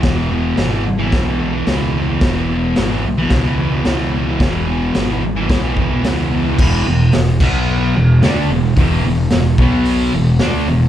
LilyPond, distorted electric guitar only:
\new Staff \with { instrumentName = "Distorted electric guitar" } { \clef bass \time 4/4 \key e \major \tempo 4 = 110 <e, b, e>8 <e, b, e>8 <e, b, e>16 <b, e>8 <b, e>8 <b, e>16 <e, b, e>16 <b, e>16 <e, b, e>8 <e, b, e>16 <b, e>16 | <e, b, e>8 <e, b, e>8 <e, b, e>16 <b, e>8 <b, e>8 <b, e>16 <e, b, e>16 <b, e>16 <e, b, e>8 <e, b, e>16 <b, e>16 | <e, b, e>8 <e, b, e>8 <e, b, e>16 <b, e>8 <b, e>8 <b, e>16 <e, b, e>16 <b, e>16 <e, b, e>8 <e, b, e>16 <b, e>16 | <e, b, e>8 <e, b,>8 <e, b,>8 <b, fis b>4 <e, b,>8 <d a d'>8 <e, b,>8 |
<e, b, e>8 <e, b,>8 <e, b,>8 <b, fis b>4 <e, b,>8 <d a d'>8 <e, b,>8 | }